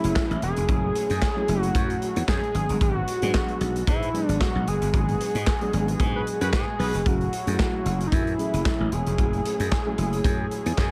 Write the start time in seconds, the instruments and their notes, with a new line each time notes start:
Already playing: fm electric piano F#3 A3 C#4 E4 G#4, pipe organ F#3 A3 C#4 E4 G#4, analog synth lead E4
0.04 slap bass F#1, closed hi-hat
0.16 kick, snare, clap
0.31 slap bass A1, closed hi-hat
0.42 slap bass E1, analog synth lead G#4, closed hi-hat
0.56 slap bass F1, closed hi-hat
0.68 slap bass F#1, fm electric piano F#3 A3 C#4 E4 G#4, kick, closed hi-hat
0.95 closed hi-hat
1.10 slap bass F#2, closed hi-hat
1.22 kick, snare, clap
1.36 fm electric piano F#3 A3 C#4 E4 G#4
1.48 slap bass F#1, fm electric piano F#3 A3 C#4 E4 G#4, closed hi-hat
1.62 analog synth lead F#4, closed hi-hat
1.75 slap bass F#2, kick, closed hi-hat
1.90 closed hi-hat
2.02 closed hi-hat
2.16 slap bass E2, closed hi-hat
2.28 slap bass F#2, analog synth lead G#4, kick, snare, clap
2.43 closed hi-hat
2.54 slap bass G#1, fm electric piano F#3 G#3 B3 D4 G#4, pipe organ G#3 B3 F#4, closed hi-hat
2.69 slap bass G1, closed hi-hat
2.81 slap bass G#1, analog synth lead F#4, kick, closed hi-hat
3.08 closed hi-hat
3.22 slap bass G#2, fm electric piano F#3 G#3 B3 D4 G#4, closed hi-hat
3.34 kick, snare, clap
3.49 closed hi-hat
3.61 slap bass B1, closed hi-hat
3.76 closed hi-hat
3.87 slap bass G#2, analog synth lead E4, kick, closed hi-hat
4.03 closed hi-hat
4.14 fm electric piano F#3 G#3 B3 D4 G#4, closed hi-hat
4.27 slap bass G#1, analog synth lead D4, closed hi-hat
4.41 analog synth lead F#4, kick, snare, clap
4.55 slap bass B1
4.67 slap bass F#1, analog synth lead G#4, closed hi-hat
4.82 slap bass G1, closed hi-hat
4.93 slap bass G#1, fm electric piano F#3 G#3 B3 D4 F#4, kick, closed hi-hat
5.01 fm electric piano G#4
5.09 closed hi-hat
5.21 closed hi-hat
5.35 slap bass G#2, closed hi-hat
5.47 kick, snare, clap
5.61 fm electric piano F#3 G#3 B3 D4 G#4, closed hi-hat
5.73 slap bass G#1, fm electric piano F#3 G#3 B3 D4 G#4, closed hi-hat
5.88 closed hi-hat
6.00 slap bass G#2, kick, closed hi-hat
6.14 horn section F#4 G#4 B4
6.27 closed hi-hat
6.41 slap bass F#2, horn section F#4 G#4 B4, closed hi-hat
6.53 slap bass G#2, analog synth lead G#4, kick, snare, clap
6.79 slap bass B1, horn section F#4 G#4 B4, open hi-hat
6.94 slap bass F1, closed hi-hat
7.06 slap bass F#1, fm electric piano F#3 A3 C#4 E4 G#4, pipe organ F#3 A3 C#4 E4 G#4, analog synth lead F#4, kick, closed hi-hat
7.21 closed hi-hat
7.33 closed hi-hat
7.47 slap bass F#2, fm electric piano F#3 A3 C#4 E4 G#4, closed hi-hat
7.59 kick, snare, clap
7.85 slap bass F#1, closed hi-hat
8.01 closed hi-hat
8.07 analog synth lead D#4
8.12 slap bass F#2, analog synth lead E4, kick, closed hi-hat
8.27 closed hi-hat
8.38 fm electric piano F#3 A3 C#4 E4 G#4, closed hi-hat
8.54 slap bass F#1, closed hi-hat
8.65 kick, snare, clap
8.80 slap bass A1
8.92 slap bass E1, analog synth lead G#4, closed hi-hat
9.06 slap bass F1, closed hi-hat
9.18 slap bass F#1, fm electric piano F#3 A3 C#4 E4 F#4, kick, closed hi-hat
9.25 fm electric piano G#4
9.33 closed hi-hat
9.45 closed hi-hat
9.60 slap bass F#2, closed hi-hat
9.72 kick, snare, clap
9.86 fm electric piano F#3 A3 C#4 E4 G#4
9.98 slap bass F#1, fm electric piano F#3 A3 C#4 E4 G#4, closed hi-hat
10.13 closed hi-hat
10.24 slap bass F#2, kick, closed hi-hat
10.51 closed hi-hat
10.66 slap bass E2, closed hi-hat
10.78 slap bass F#2, analog synth lead G#4, kick, snare, clap